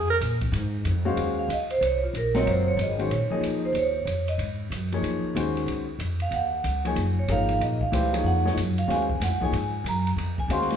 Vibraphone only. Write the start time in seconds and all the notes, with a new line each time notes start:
1.39 F5
1.53 D#5
1.71 C5
1.84 C#5
2.04 F4
2.17 A#4
2.36 C#5
2.49 C5
2.68 C#5
2.82 D#5
3.01 C#5
3.65 C5
3.78 C#5
4.29 D#5
6.22 F5
6.34 F#5
6.87 G#5
7.19 C#5
7.32 F5
7.62 D#5
7.83 F5
8.26 F#5
8.79 F5
8.91 G#5
9.23 F#5
9.45 G#5
9.88 A#5
10.40 G#5
10.53 C6